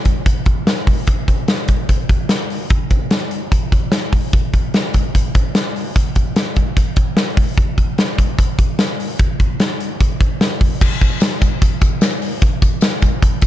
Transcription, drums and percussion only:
0.05 kick, closed hi-hat
0.26 kick, closed hi-hat
0.46 kick, closed hi-hat
0.67 snare, closed hi-hat
0.87 kick, open hi-hat
1.07 kick, closed hi-hat
1.28 kick, closed hi-hat
1.48 snare, closed hi-hat
1.68 kick, closed hi-hat
1.89 kick, closed hi-hat
2.09 kick, closed hi-hat
2.29 snare, closed hi-hat
2.50 open hi-hat
2.70 kick, closed hi-hat
2.90 kick, closed hi-hat
3.11 snare, closed hi-hat
3.31 closed hi-hat
3.52 kick, closed hi-hat
3.72 kick, closed hi-hat
3.92 snare, closed hi-hat
4.13 kick, open hi-hat
4.33 kick, closed hi-hat
4.54 kick, closed hi-hat
4.74 snare, closed hi-hat
4.94 kick, closed hi-hat
5.15 kick, closed hi-hat
5.35 kick, closed hi-hat
5.55 snare, closed hi-hat
5.76 open hi-hat
5.96 kick, closed hi-hat
6.15 kick, closed hi-hat
6.36 snare, closed hi-hat
6.56 kick, closed hi-hat
6.77 kick, closed hi-hat
6.96 kick, closed hi-hat
7.17 snare, closed hi-hat
7.37 kick, open hi-hat
7.58 kick, closed hi-hat
7.78 kick, closed hi-hat
7.98 snare, closed hi-hat
8.18 kick, closed hi-hat
8.39 kick, closed hi-hat
8.59 kick, closed hi-hat
8.79 snare, closed hi-hat
9.00 open hi-hat
9.19 kick, closed hi-hat
9.40 kick, closed hi-hat
9.60 snare, closed hi-hat
9.80 closed hi-hat
10.00 kick, closed hi-hat
10.21 kick, closed hi-hat
10.41 snare, closed hi-hat
10.61 kick, open hi-hat
10.81 kick, crash, tambourine
11.01 kick, closed hi-hat, tambourine
11.20 snare, closed hi-hat, tambourine
11.41 kick, closed hi-hat, tambourine
11.61 kick, closed hi-hat, tambourine
11.81 kick, closed hi-hat, tambourine
12.01 snare, closed hi-hat, tambourine
12.22 open hi-hat, tambourine
12.42 kick, closed hi-hat, tambourine
12.62 kick, closed hi-hat, tambourine
12.81 snare, closed hi-hat, tambourine
13.02 kick, closed hi-hat, tambourine
13.22 kick, closed hi-hat
13.42 kick, closed hi-hat, tambourine

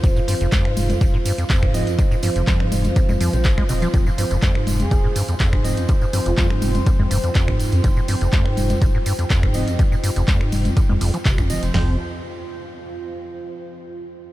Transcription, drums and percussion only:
0.04 kick, closed hi-hat, tambourine
0.16 tambourine
0.28 open hi-hat, tambourine
0.41 closed hi-hat, tambourine
0.52 kick, clap, closed hi-hat, tambourine, low conga
0.65 finger snap
0.77 open hi-hat, tambourine, low conga
0.90 closed hi-hat, tambourine, low conga
1.01 kick, closed hi-hat, tambourine
1.25 open hi-hat, tambourine
1.38 closed hi-hat, tambourine
1.50 kick, clap, closed hi-hat, tambourine
1.63 finger snap, kick
1.74 open hi-hat, tambourine
1.87 closed hi-hat, tambourine
1.99 kick, closed hi-hat, tambourine
2.11 tambourine
2.23 open hi-hat, tambourine
2.36 closed hi-hat, tambourine
2.47 kick, clap, closed hi-hat, tambourine, low conga
2.60 finger snap
2.72 open hi-hat, tambourine, low conga
2.85 closed hi-hat, tambourine, low conga
2.96 kick, closed hi-hat, tambourine
3.09 tambourine, low conga
3.21 open hi-hat, tambourine
3.33 closed hi-hat, tambourine
3.44 kick, clap, closed hi-hat, tambourine
3.58 finger snap, kick
3.69 open hi-hat, tambourine
3.82 closed hi-hat, tambourine
3.94 kick, closed hi-hat, tambourine
4.06 tambourine
4.18 open hi-hat, tambourine
4.30 closed hi-hat, tambourine
4.42 kick, clap, closed hi-hat, tambourine, low conga
4.55 finger snap
4.67 open hi-hat, tambourine, low conga
4.80 closed hi-hat, tambourine, low conga
4.91 kick, closed hi-hat, tambourine
5.16 open hi-hat, tambourine
5.28 closed hi-hat, tambourine
5.40 kick, clap, closed hi-hat, tambourine
5.53 finger snap, kick
5.65 open hi-hat, tambourine
5.77 closed hi-hat, tambourine
5.88 kick, closed hi-hat, tambourine
6.01 tambourine
6.13 open hi-hat, tambourine
6.26 closed hi-hat, tambourine
6.37 kick, clap, closed hi-hat, tambourine, low conga
6.50 finger snap
6.62 open hi-hat, tambourine, low conga
6.75 closed hi-hat, tambourine, low conga
6.86 kick, closed hi-hat, tambourine
6.99 low conga
7.11 open hi-hat, tambourine
7.24 closed hi-hat, tambourine
7.35 kick, clap, closed hi-hat, tambourine
7.48 finger snap, kick
7.60 open hi-hat, tambourine
7.72 closed hi-hat, tambourine
7.84 kick, closed hi-hat, tambourine
7.97 tambourine
8.08 open hi-hat, tambourine
8.21 closed hi-hat, tambourine
8.33 kick, clap, closed hi-hat, tambourine, low conga
8.46 finger snap
8.57 open hi-hat, tambourine, low conga
8.70 closed hi-hat, tambourine, low conga
8.82 kick, closed hi-hat, tambourine
9.06 open hi-hat, tambourine
9.19 closed hi-hat, tambourine
9.30 kick, clap, closed hi-hat, tambourine
9.43 finger snap, kick
9.54 open hi-hat, tambourine
9.68 closed hi-hat, tambourine
9.79 kick, closed hi-hat, tambourine
9.92 tambourine
10.04 open hi-hat, tambourine
10.16 closed hi-hat, tambourine
10.28 kick, clap, closed hi-hat, tambourine, low conga
10.41 finger snap
10.52 open hi-hat, tambourine, low conga
10.65 closed hi-hat, tambourine, low conga
10.77 kick, closed hi-hat, tambourine
10.89 low conga
11.01 open hi-hat, tambourine
11.14 closed hi-hat, tambourine
11.25 kick, clap, closed hi-hat, tambourine
11.38 finger snap, kick, tambourine
11.50 open hi-hat, tambourine
11.63 closed hi-hat, tambourine
11.74 snare, floor tom, open hi-hat

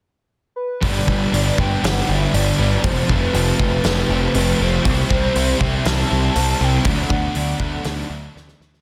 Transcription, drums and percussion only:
0.83 kick, open hi-hat
1.08 kick
1.34 open hi-hat
1.58 kick
1.84 snare, open hi-hat
2.34 open hi-hat
2.84 kick, open hi-hat
3.09 kick
3.34 open hi-hat
3.60 kick
3.84 snare, open hi-hat
4.34 open hi-hat
4.85 kick, open hi-hat
5.10 kick
5.35 open hi-hat
5.61 kick
5.85 snare, open hi-hat
6.36 open hi-hat
6.84 kick, open hi-hat
7.10 kick
7.35 open hi-hat
7.60 kick
7.84 snare, open hi-hat
8.37 snare
8.48 snare
8.61 snare
8.74 snare

